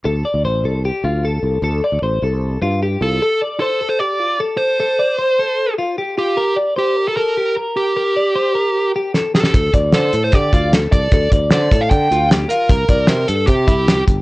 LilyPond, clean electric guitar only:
\new Staff \with { instrumentName = "Clean electric guitar" } { \time 4/4 \key d \minor \tempo 4 = 152 a'8 d''8 c''8 a'8 g'8 f'8 a'4 | a'8 d''8 c''8 a'4 f'8 g'8 f'8 | a'8 d''8 c''8 a'8 g'8 f'8 a'4 | a'8 d''8 c''8 a'4 f'8 g'8 f'8 |
bes'8 d''8 c''8 bes'8 a'8 g'8 bes'4 | bes'8 d''8 c''8 bes'4 g'8 a'8 g'8 | a'8 d''8 c''8 a'8 g'8 f'8 a'4 | a'8 d''8 c''8 a'4 f'8 g'8 f'8 |
bes'8 d''8 c''8 a'8 g'8 e'8 g'4 | }